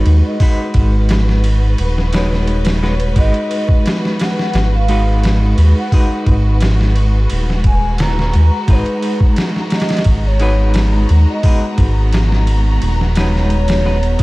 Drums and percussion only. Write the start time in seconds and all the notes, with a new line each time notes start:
0.06 ride
0.40 kick, open hi-hat
0.74 kick, ride
1.09 snare, ride
1.29 snare
1.44 ride
1.78 ride
1.98 snare
2.13 snare, ride
2.33 snare
2.47 ride
2.65 snare, ride
2.84 snare
3.00 ride
3.16 kick, ride
3.34 ride
3.51 ride
3.69 kick
3.86 snare, ride
4.05 snare
4.20 snare, ride
4.39 snare
4.54 snare, ride
4.88 ride
5.23 snare, ride
5.58 ride
5.92 kick, open hi-hat
6.27 kick, ride
6.61 snare, ride
6.81 snare
6.96 ride
7.30 ride
7.50 snare
7.64 kick, ride
7.98 snare, ride
8.19 snare
8.34 ride
8.68 kick, ride
8.86 ride
9.02 ride
9.20 kick
9.36 snare, ride
9.56 snare
9.70 snare, ride
9.80 snare, ride
9.89 snare, ride
9.97 snare, ride
10.04 kick, ride
10.40 ride
10.74 snare, ride
11.09 ride
11.43 kick, open hi-hat
11.78 kick, ride
12.13 snare, ride
12.32 snare
12.47 ride
12.82 ride
13.01 snare
13.15 snare, ride
13.35 snare
13.50 ride
13.68 snare, ride
13.86 snare
14.03 ride
14.19 kick, ride